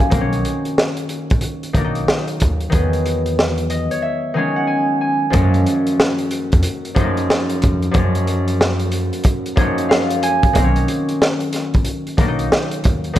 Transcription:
0.00 0.17 F#2 medium
0.00 0.17 F3 medium
0.00 0.17 G#3 medium
0.00 0.20 C#4 medium
0.00 0.20 C#5 medium
0.00 0.17 F5 medium
0.00 1.30 G#5 medium
0.00 kick medium
0.00 closed hi-hat soft
0.10 0.42 B1 loud
0.10 1.72 D#3 medium
0.10 1.74 F#3 medium
0.10 1.76 A#3 medium
0.10 kick loud
0.10 closed hi-hat medium
0.14 0.21 C4 medium
0.21 1.84 C#4 loud
0.33 closed hi-hat soft
0.45 closed hi-hat medium
0.65 closed hi-hat medium
0.78 snare loud
0.97 closed hi-hat soft
1.09 closed hi-hat medium
1.30 1.42 A#1 medium
1.30 kick medium
1.30 closed hi-hat medium
1.41 closed hi-hat medium
1.63 closed hi-hat soft
1.73 2.05 B1 medium
1.73 2.68 D#3 medium
1.73 2.70 F#3 medium
1.73 2.40 A#3 medium
1.73 kick loud
1.73 closed hi-hat medium
1.78 1.85 D4 medium
1.84 2.44 D#4 medium
1.95 closed hi-hat medium
2.08 snare loud
2.28 closed hi-hat medium
2.40 2.71 D#2 medium
2.40 kick loud
2.40 closed hi-hat medium
2.60 closed hi-hat soft
2.70 3.87 E2 loud
2.70 4.33 D#3 medium
2.70 4.34 F#3 medium
2.70 4.36 G#3 medium
2.70 kick loud
2.70 closed hi-hat medium
2.74 5.39 B3 medium
2.93 closed hi-hat soft
3.06 closed hi-hat medium
3.26 closed hi-hat medium
3.39 snare loud
3.58 closed hi-hat soft
3.70 4.08 D#5 medium
3.70 closed hi-hat medium
3.91 5.82 C#5 medium
3.91 closed hi-hat soft
4.02 4.40 E5 medium
4.34 5.39 D#3 medium
4.34 5.39 F#3 medium
4.34 5.31 G#3 medium
4.34 4.67 G#5 medium
4.38 5.01 C#4 medium
4.56 5.37 F#5 medium
4.67 5.01 G#5 medium
5.01 6.51 G#5 medium
5.30 6.93 F#2 medium
5.30 5.64 F#2 loud
5.30 6.94 F3 medium
5.30 6.95 G#3 medium
5.30 7.04 A#3 medium
5.30 kick loud
5.30 closed hi-hat medium
5.35 7.95 C#4 medium
5.54 closed hi-hat soft
5.66 closed hi-hat medium
5.87 closed hi-hat medium
6.00 snare loud
6.18 closed hi-hat medium
6.31 closed hi-hat medium
6.52 6.64 F2 loud
6.52 kick loud
6.52 closed hi-hat medium
6.63 closed hi-hat medium
6.85 closed hi-hat soft
6.94 7.90 F#2 medium
6.94 7.26 F#2 medium
6.94 7.91 F3 medium
6.94 7.92 G#3 medium
6.94 7.05 A3 medium
6.94 kick loud
6.94 closed hi-hat medium
6.99 7.62 D#4 medium
7.04 7.65 A#3 medium
7.17 closed hi-hat medium
7.30 snare loud
7.50 closed hi-hat medium
7.62 7.93 F2 loud
7.62 kick loud
7.62 closed hi-hat medium
7.82 closed hi-hat soft
7.91 9.54 F#2 medium
7.91 9.09 F#2 loud
7.91 9.55 F3 medium
7.91 9.57 G#3 medium
7.91 9.59 A#3 medium
7.91 kick loud
7.91 closed hi-hat medium
7.95 10.64 C#4 medium
8.15 closed hi-hat soft
8.27 closed hi-hat medium
8.48 closed hi-hat medium
8.61 snare loud
8.79 closed hi-hat soft
8.92 closed hi-hat medium
9.13 closed hi-hat medium
9.24 kick loud
9.24 closed hi-hat medium
9.46 closed hi-hat soft
9.56 10.60 F#2 medium
9.56 10.60 F3 medium
9.56 10.60 G#3 medium
9.56 10.22 A#3 medium
9.56 10.64 C#5 medium
9.56 kick loud
9.56 closed hi-hat medium
9.60 10.23 D#4 medium
9.78 closed hi-hat medium
9.89 10.61 F5 medium
9.89 snare loud
10.10 closed hi-hat medium
10.23 11.73 G#5 medium
10.23 closed hi-hat medium
10.43 kick medium
10.43 closed hi-hat soft
10.53 10.85 B1 loud
10.53 12.16 D#3 medium
10.53 12.17 F#3 medium
10.53 12.20 A#3 medium
10.53 kick loud
10.53 closed hi-hat medium
10.58 10.65 C4 medium
10.64 12.27 C#4 medium
10.76 closed hi-hat soft
10.88 closed hi-hat medium
11.09 closed hi-hat medium
11.22 snare loud
11.40 closed hi-hat medium
11.53 snare soft
11.53 closed hi-hat medium
11.74 11.85 A#1 medium
11.74 kick medium
11.74 closed hi-hat medium
11.85 closed hi-hat medium
12.07 closed hi-hat soft
12.17 12.48 B1 medium
12.17 13.12 D#3 medium
12.17 13.14 F#3 medium
12.17 12.83 A#3 medium
12.17 kick loud
12.17 closed hi-hat medium
12.21 12.28 D4 medium
12.28 12.87 D#4 loud
12.39 closed hi-hat medium
12.52 snare loud
12.71 closed hi-hat medium
12.84 13.14 D#2 medium
12.84 kick loud
12.84 closed hi-hat medium
13.04 closed hi-hat soft
13.13 13.19 D#3 medium
13.13 13.19 F#3 medium
13.13 closed hi-hat medium

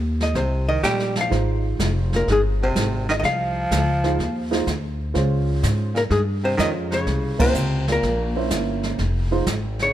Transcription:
0.00 0.33 D#2 medium
0.20 0.37 D#5 medium
0.20 snare soft
0.35 0.81 C2 medium
0.35 0.65 C3 medium
0.35 0.69 C5 medium
0.35 brush sweep soft
0.35 kick soft
0.35 snare soft
0.68 0.82 D#3 medium
0.68 0.82 D#5 medium
0.83 1.30 A#1 medium
0.83 1.13 G3 medium
0.83 1.18 G5 medium
0.83 kick soft
0.83 snare soft
0.83 hi-hat pedal soft
0.99 snare soft
1.16 1.30 F3 medium
1.16 snare soft
1.21 1.32 F5 medium
1.30 1.78 G#1 medium
1.30 2.65 G#3 medium
1.30 2.65 D#4 medium
1.30 2.65 F4 medium
1.30 2.66 C5 medium
1.30 brush sweep soft
1.30 kick soft
1.30 snare soft
1.79 2.26 F1 medium
1.79 kick soft
1.79 snare medium
1.79 hi-hat pedal soft
2.13 2.27 A#2 medium
2.13 2.28 A#4 medium
2.13 snare soft
2.27 2.74 G1 medium
2.27 2.44 G#2 medium
2.27 brush sweep soft
2.27 kick soft
2.27 snare soft
2.32 2.40 G#4 medium
2.63 3.06 C3 medium
2.63 3.11 C5 medium
2.75 3.22 G#1 medium
2.75 kick soft
2.75 snare medium
2.75 hi-hat pedal soft
3.09 3.13 D#3 medium
3.09 3.15 D#5 medium
3.09 snare soft
3.19 3.69 C2 medium
3.19 3.23 D#3 medium
3.19 3.23 D#5 medium
3.23 4.64 F3 medium
3.23 4.64 F5 medium
3.23 brush sweep soft
3.23 kick soft
3.23 snare soft
3.71 4.17 C#2 medium
3.71 kick soft
3.71 snare medium
3.71 hi-hat pedal medium
4.04 4.17 G#3 medium
4.04 4.17 D#4 medium
4.04 4.17 F4 medium
4.04 4.17 C5 medium
4.04 snare soft
4.19 4.65 D#2 medium
4.19 brush sweep soft
4.19 kick soft
4.19 snare soft
4.51 4.65 G#3 medium
4.51 4.65 D#4 medium
4.51 4.65 F4 medium
4.51 4.65 C5 medium
4.51 snare soft
4.67 5.13 D2 medium
4.67 kick soft
4.67 snare medium
4.67 hi-hat pedal soft
5.14 5.61 C#2 medium
5.14 5.88 G#3 medium
5.14 5.89 C#4 medium
5.14 5.88 F4 medium
5.14 5.89 C5 medium
5.14 brush sweep soft
5.14 kick soft
5.14 snare soft
5.63 6.09 G#2 medium
5.63 kick soft
5.63 snare medium
5.63 hi-hat pedal medium
5.95 6.01 A#2 medium
5.95 6.02 A#4 medium
5.95 snare soft
6.10 6.57 G2 medium
6.10 6.25 G#2 medium
6.10 6.20 G#4 medium
6.10 brush sweep soft
6.10 kick soft
6.10 snare soft
6.43 6.57 C3 medium
6.43 6.60 C5 medium
6.57 7.05 F2 medium
6.57 6.72 D#3 medium
6.57 6.88 G#3 medium
6.57 6.88 C#4 medium
6.57 6.88 F4 soft
6.57 6.88 C#5 medium
6.57 6.69 D#5 medium
6.57 kick soft
6.57 snare medium
6.57 hi-hat pedal soft
6.91 7.35 C#3 medium
6.91 7.41 C#5 medium
6.91 snare soft
7.06 7.53 C2 medium
7.06 brush sweep soft
7.06 kick soft
7.06 snare soft
7.38 7.84 C3 medium
7.38 7.52 A#3 medium
7.38 7.52 C#4 medium
7.38 7.52 E4 medium
7.38 7.53 C5 medium
7.38 7.90 C5 medium
7.38 kick medium
7.38 ride medium
7.54 8.00 C#2 medium
7.54 hi-hat pedal medium
7.88 8.46 A#2 medium
7.88 snare soft
7.92 8.49 A#4 medium
8.03 8.49 A#1 medium
8.03 brush sweep soft
8.03 kick soft
8.03 snare soft
8.36 8.95 A#3 medium
8.36 8.95 C#4 medium
8.36 8.96 E4 medium
8.36 8.96 C5 medium
8.50 8.97 G1 medium
8.50 kick soft
8.50 snare medium
8.50 hi-hat pedal medium
8.83 snare soft
8.98 9.45 F1 medium
8.98 brush sweep soft
8.98 kick soft
8.98 snare soft
9.31 9.44 G#3 medium
9.31 9.45 D#4 medium
9.31 9.45 F4 medium
9.31 9.45 C5 medium
9.46 9.93 G#1 medium
9.46 kick soft
9.46 snare medium
9.46 hi-hat pedal medium
9.79 9.93 C#3 medium
9.79 9.93 C#5 medium
9.79 snare soft

